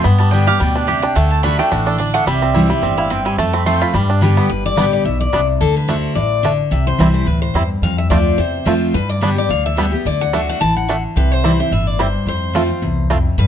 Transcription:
0.04 G2 B3 B5
0.19 G3 A5
0.31 D3 G3 B3 D4 G4 G5
0.47 B3 G4 F5
0.59 D2 B2 G3 G5
0.75 D4 B4
0.87 C3 G4 D5
1.02 D4 G5
1.15 D2 D3 A3 F#5
1.31 A5
1.43 D3 A3 D4 F#4 B5
1.58 A3 D4 F#4 G5
1.71 A1 E3 D4 F#5
1.86 D4 A4
1.98 D3 D4 D5
2.14 A3 F#5
2.26 C2 C3 G3 E5
2.42 C4
2.54 E3 G3 C4 E4
2.70 G3 C4 E4
2.82 G1 A2 C4 E5
2.98 E4 F5
3.10 G2 C4 G5
3.25 G3 G#5
3.38 F2 A3 A5
3.53 C4 B5
3.66 F3 A3 C4 F4 C6
3.81 F4 B5
3.93 G2 G3
4.10 D4
4.21 D3 G3 B3 G4
4.37 B3
4.49 G1 G2 B4
4.66 D5
4.76 A1 D3 G3 B3 D4 G4
4.93 D5
5.05 B1 B2 E5
5.21 D5
5.33 C2 C3 G3 B3 D4
5.61 D2 D3 A4
5.77 B4
5.88 D3 A3 D4 F#4 C5
6.15 A1 A2 D5
6.43 D3 A3 D4
6.71 C2 C3 E5
6.87 C5
6.99 C2 E3 G3 C4 E4
7.14 C5
7.26 D2 A2 B4
7.42 C5
7.54 E2 G2 G3 C4 E4
7.82 F2 F5
7.98 E5
8.10 D2 F3 A3 C4 F4 D5
8.38 E2 C3 C5
8.65 F2 F3 A3 C4 F4
8.94 G2 B4
9.09 D5
9.21 D3 G3 B3 D4 G4
9.35 B3 G4 D5
9.49 D2 D3 F5
9.66 E5
9.76 D3 G3 B3 D4 G4
9.92 B3 G4
10.05 D2 D3 D5
10.21 F#5
10.33 D3 A3 D4 F#4
10.49 F#5
10.61 A1 E3 A5
10.77 F#5
10.88 D3 A3 D4
11.16 C2 C3 B4
11.32 C5
11.44 E3 G3 C4 E4
11.59 C4 E4 C5
11.71 G1 A2 E5
11.87 D5
11.99 G2 G3 C4 E4 C5
12.26 F2 C5
12.54 F3 A3 C4 F4
12.69 C4 F4
12.82 C2 E2
13.10 F2 A3 C4 F4
13.38 G2 B4

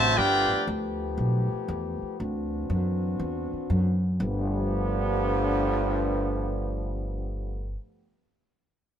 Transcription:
Already playing: A1 C3 E3 F#3 A3 C4 D4 F#4 C5 E5 A5
0.17 G1 F3 A3 B3 D4 F4 G4 B4 D5 G5
0.52 muted upright bass stroke
0.67 D2
1.18 B1
1.52 muted upright bass stroke
1.68 E2
2.02 muted upright bass stroke
2.19 D2 E3 C4 D4 F#4
2.70 F#2
3.19 E2
3.53 muted upright bass stroke
3.70 F#2
4.20 G1 G2 D3 F3 A3 B3 G4

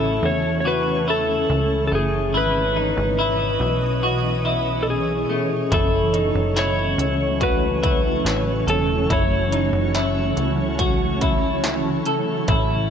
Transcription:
Already playing: A1 C#3 E3 A3 C#4 E4 A4
0.23 E2 C#5
0.60 C#5
0.65 F#4 B4
1.08 E4 A4
1.49 C#2
1.87 A4
1.92 F#1 A3 G#4
2.34 G#1 B2 E4 B4 D#5
2.76 D#4
2.97 G#1
3.19 E4
3.60 B1
4.03 F#4
4.45 E4
4.83 A4
4.90 G#4
5.29 A3
5.72 F#1 C#3 F#3 A3 E4 A4, kick, closed hi-hat
6.14 D#4, closed hi-hat
6.29 A4
6.34 F#1 C#5
6.39 D#5
6.56 E4 C#5, snare, closed hi-hat
6.98 C#2, closed hi-hat
7.41 F#4 B4, kick, closed hi-hat
7.83 E4, kick, closed hi-hat
8.25 A1, snare, closed hi-hat
8.67 E1 A4, closed hi-hat
9.10 F#1 E4 C#5, kick, closed hi-hat
9.52 D#4, closed hi-hat
9.73 F#1
9.95 E4, snare, closed hi-hat
10.37 C#2, closed hi-hat
10.79 F#4, kick, closed hi-hat
11.21 E4, kick, closed hi-hat
11.64 snare, closed hi-hat
12.05 A4, closed hi-hat
12.48 A1 C#4 E4, kick, closed hi-hat

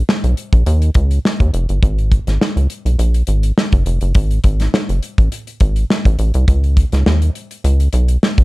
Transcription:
0.09 snare
0.24 B1, closed hi-hat
0.37 closed hi-hat
0.53 A#1, kick, closed hi-hat
0.66 D#2, closed hi-hat
0.82 closed hi-hat
0.94 C#2, kick, closed hi-hat
1.11 closed hi-hat
1.25 snare
1.40 D#2, kick, closed hi-hat
1.53 F1, closed hi-hat
1.69 G1, closed hi-hat
1.83 G#1, kick, closed hi-hat
1.98 closed hi-hat
2.12 kick, closed hi-hat
2.27 G#1, snare, closed hi-hat
2.41 snare
2.56 C#2, closed hi-hat
2.70 closed hi-hat
2.85 B1, closed hi-hat
2.99 A#1, closed hi-hat
3.14 closed hi-hat
3.27 G#1, closed hi-hat
3.43 closed hi-hat
3.58 snare
3.72 F#1, kick, closed hi-hat
3.86 F1, closed hi-hat
4.01 F#1, closed hi-hat
4.15 G#1, kick, closed hi-hat
4.31 closed hi-hat
4.44 G#1, kick, closed hi-hat
4.60 snare, closed hi-hat
4.74 snare
4.89 F#1, closed hi-hat
5.03 closed hi-hat
5.18 A1, kick, closed hi-hat
5.32 closed hi-hat
5.47 closed hi-hat
5.60 G#1, kick, closed hi-hat
5.76 closed hi-hat
5.90 snare
6.05 A1, kick, closed hi-hat
6.19 A1, closed hi-hat
6.34 C2, closed hi-hat
6.48 C#2, kick, closed hi-hat
6.64 closed hi-hat
6.77 kick, closed hi-hat
6.92 C#2, snare, closed hi-hat
7.06 D#2, snare
7.22 closed hi-hat
7.35 closed hi-hat
7.51 closed hi-hat
7.64 C#2, closed hi-hat
7.80 closed hi-hat
7.93 B1, closed hi-hat
8.08 closed hi-hat
8.23 snare
8.38 A#1, kick, closed hi-hat

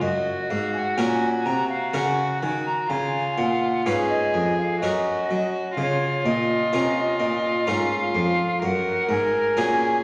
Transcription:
0.01 F#2 F#4 D#5
0.50 G#2 F5
0.74 G#5
0.78 F#5
0.97 A#2 C#4 F#4 A#4 G#5
1.45 C3 A#5
1.69 F5
1.94 C#3 C#4 F#4 A#4 F#5
2.41 D#3 G#5
2.66 A#5
2.89 C#3 F4 G#5
3.37 A#2 F#5
3.86 G#2 C#4 F4 G#4 B4 F5
4.09 D#5
4.34 F2
4.58 F5
4.81 F#2 C#4 F#4 A#4 D#5
5.29 F#3
5.77 C#3 F4 C#5
6.24 A#2 D#5
6.73 C3 C#4 F4 A#4
7.20 A#2
7.67 G#2 C#4 F4 A#4 F#5
7.71 F5
8.15 F2
8.62 F#2 A#4 F#5
9.09 G#2 G#5
9.57 A#2 C#4 F#4 G#4 A#4

